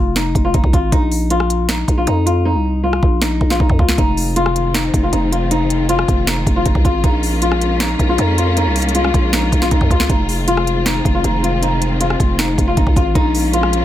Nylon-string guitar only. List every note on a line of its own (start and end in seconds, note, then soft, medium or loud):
0.00 0.14 F4 medium
0.16 0.43 D#4 medium
0.45 0.54 F4 medium
0.54 0.72 D#4 medium
0.73 0.91 F4 medium
0.92 1.28 D#4 loud
1.31 1.67 F4 medium
1.69 1.96 D#4 medium
1.98 2.07 F4 medium
2.07 2.25 D#4 medium
2.26 2.44 F4 medium
2.45 2.81 D#4 medium
2.84 3.19 F4 medium
3.22 3.49 D#4 medium
3.50 3.59 F4 medium
3.60 3.78 D#4 medium
3.79 3.97 F4 medium
3.98 4.34 D#4 loud
4.36 4.72 F4 medium
4.74 5.01 D#4 medium
5.03 5.12 F4 medium
5.13 5.31 D#4 medium
5.32 5.50 F4 medium
5.51 5.87 D#4 loud
5.89 6.25 F4 medium
6.27 6.54 D#4 medium
6.56 6.65 F4 medium
6.66 6.84 D#4 medium
6.85 7.03 F4 medium
7.04 7.40 D#4 loud
7.42 7.78 F4 medium
7.80 8.07 D#4 loud
8.09 8.18 F4 medium
8.19 8.37 D#4 medium
8.38 8.56 F4 medium
8.57 8.93 D#4 loud
8.95 9.31 F4 medium
9.33 9.60 D#4 medium
9.62 9.71 F4 medium
9.71 9.89 D#4 medium
9.90 10.09 F4 medium
10.10 10.46 D#4 loud
10.48 10.84 F4 medium
10.86 11.13 D#4 medium
11.15 11.24 F4 medium
11.24 11.42 D#4 medium
11.43 11.61 F4 medium
11.62 11.98 D#4 medium
12.01 12.37 F4 medium
12.39 12.66 D#4 medium
12.68 12.77 F4 medium
12.77 12.95 D#4 medium
12.96 13.14 F4 medium
13.15 13.51 D#4 loud
13.53 13.85 F4 medium